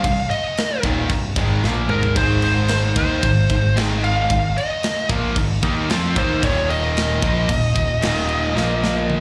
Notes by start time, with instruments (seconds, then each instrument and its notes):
Already playing: lead electric guitar F5
0.04 picked electric bass C1, distorted electric guitar C2 G2, kick, crash
0.30 lead electric guitar D#5, crash
0.57 snare, crash
0.83 picked electric bass D#1, distorted electric guitar D#2 A#2 D#3, kick, crash
1.09 picked electric bass C1, distorted electric guitar C2 G2, kick, crash
1.36 picked electric bass G#1, distorted electric guitar G#2 D#3 G#3, kick, crash
1.64 picked electric bass A#1, distorted electric guitar A#2 F3 A#3, snare
1.89 picked electric bass G#1, distorted electric guitar G#2 D#3 G#3, lead electric guitar A#4, mid tom
2.03 floor tom
2.16 picked electric bass G#1, distorted electric guitar G#2 D#3 G#3, lead electric guitar C5, kick, crash
2.42 lead electric guitar C5, crash
2.68 snare, crash
2.96 picked electric bass D#2, distorted electric guitar D#3 A#3 D#4, lead electric guitar C5, kick, crash
3.23 picked electric bass G#1, distorted electric guitar G#2 D#3, kick, crash
3.50 picked electric bass G#1, distorted electric guitar G#2 D#3, kick, crash
3.76 picked electric bass G#1, distorted electric guitar G#2 D#3 G#3, snare, crash
4.04 lead electric guitar F5, crash
4.30 picked electric bass G#1, distorted electric guitar G#2 D#3, kick, crash
4.58 lead electric guitar D#5, crash
4.83 snare, crash
5.09 picked electric bass A#1, distorted electric guitar A#2 F3 A#3, kick, crash
5.36 picked electric bass G#1, distorted electric guitar G#2 D#3, kick, crash
5.63 picked electric bass D#2, distorted electric guitar D#3 A#3 D#4, kick, crash
5.90 picked electric bass F2, distorted electric guitar F3 C4 F4, snare, crash
6.16 picked electric bass D#2, distorted electric guitar D#3 A#3 D#4, lead electric guitar C5, kick, crash
6.43 picked electric bass D#1, distorted electric guitar D#2 A#2 D#3, lead electric guitar C#5, kick, crash
6.70 lead electric guitar D#5, crash
6.97 snare, crash
7.22 picked electric bass A#1, distorted electric guitar A#2 F3 A#3, kick, crash
7.49 picked electric bass D#1, distorted electric guitar D#2 A#2, kick, crash
7.76 picked electric bass D#1, distorted electric guitar D#2 A#2, kick, crash
8.02 picked electric bass D#1, distorted electric guitar D#2 A#2 D#3, snare, crash
8.29 crash
8.55 picked electric bass A#1, distorted electric guitar A#2 F3 A#3, snare
8.84 snare
9.10 high tom